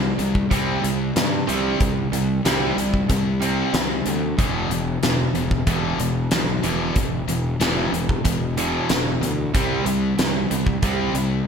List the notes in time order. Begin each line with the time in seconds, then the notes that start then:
Already playing: C2 C3 G3
0.19 C2 C3 G3, closed hi-hat
0.35 kick
0.51 C2 C3 G3 C4, kick, closed hi-hat
0.83 C2 C3 G3, closed hi-hat
1.16 G2 C3 G3, snare, closed hi-hat
1.47 C2 C3 G3 C4, closed hi-hat
1.80 C2 C3 G3, kick, closed hi-hat
2.12 C2 C3 G3, closed hi-hat
2.45 C2 C3 G3 C4, snare, closed hi-hat
2.77 C2 C3 G3, closed hi-hat
2.94 kick
3.09 C2 C3 G3, kick, closed hi-hat
3.42 C3 G3 C4, closed hi-hat
3.73 C2 C3 G3, snare, closed hi-hat
4.06 D2 C3 G3, closed hi-hat
4.39 E1 E2 B2 E3, kick, closed hi-hat
4.70 E1 E2 B2, closed hi-hat
5.02 E1 E2 B2, snare, closed hi-hat
5.34 E1 E2 B2, closed hi-hat
5.51 kick
5.67 E1 E2 B2 E3, kick, closed hi-hat
5.99 E1 E2 B2, closed hi-hat
6.31 B1 E2 B2, snare, closed hi-hat
6.63 E1 E2 B2 E3, closed hi-hat
6.95 E1 E2 B2, kick, closed hi-hat
7.28 E1 E2 B2, closed hi-hat
7.60 E1 E2 B2 E3, snare, closed hi-hat
7.93 E1 E2 B2, closed hi-hat
8.09 kick
8.24 E1 E2 B2, kick, closed hi-hat
8.57 E2 B2 E3, closed hi-hat
8.89 E1 E2 B2, snare, closed hi-hat
9.21 D2 E2 B2, closed hi-hat
9.54 C2 C3 G3 C4, kick, closed hi-hat
9.86 C2 C3 G3, closed hi-hat
10.19 C2 C3 G3, snare, closed hi-hat
10.51 C2 C3 G3, closed hi-hat
10.67 kick
10.83 C2 C3 G3 C4, kick, closed hi-hat
11.14 C2 C3 G3, closed hi-hat